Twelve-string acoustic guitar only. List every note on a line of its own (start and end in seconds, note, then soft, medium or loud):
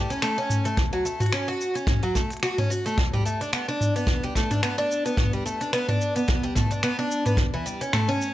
0.10 0.22 C#4 medium
0.22 0.36 A3 loud
0.38 0.64 C#4 loud
0.65 0.77 A3 medium
0.93 1.04 F#3 medium
1.05 1.20 A3 medium
1.20 1.32 F#4 medium
1.32 1.46 C#4 medium
1.48 1.74 F#4 medium
1.75 2.01 C#4 medium
2.03 2.14 F#3 medium
2.15 2.30 A3 medium
2.43 2.57 F#4 medium
2.58 2.69 C#4 medium
2.70 2.84 F#4 medium
2.86 2.97 A3 medium
3.13 3.24 G3 medium
3.25 3.40 A3 medium
3.41 3.52 D4 medium
3.53 3.67 B3 medium
3.68 3.94 D4 medium
3.96 4.22 B3 medium
4.24 4.34 G3 medium
4.36 4.50 A3 medium
4.51 4.62 D4 medium
4.63 4.77 B3 loud
4.78 5.04 D4 loud
5.06 5.32 B3 medium
5.33 5.44 G3 medium
5.46 5.60 A3 medium
5.61 5.72 D4 medium
5.73 5.87 B3 loud
5.89 6.14 D4 loud
6.16 6.42 B3 medium
6.44 6.54 G3 medium
6.56 6.70 A3 medium
6.71 6.83 D4 medium
6.83 6.97 B3 loud
6.99 7.25 D4 loud
7.26 7.38 B3 medium
7.54 7.64 E3 medium
7.66 7.80 G3 medium
7.81 7.93 C#4 medium
7.93 8.07 A3 loud
8.09 8.34 C#4 loud